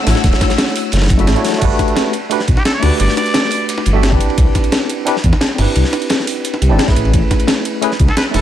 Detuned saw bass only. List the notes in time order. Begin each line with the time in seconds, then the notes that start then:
0.06 A1
0.24 D1
0.93 F#1
1.10 F#1
1.27 A1
1.62 G1
2.48 B1
2.83 D2
3.00 G1
3.86 G1
4.38 C2
5.24 E2
5.58 G1
5.76 C2
6.62 C2
6.71 G1
6.96 A1
7.14 A1
8.00 C#2
8.34 E1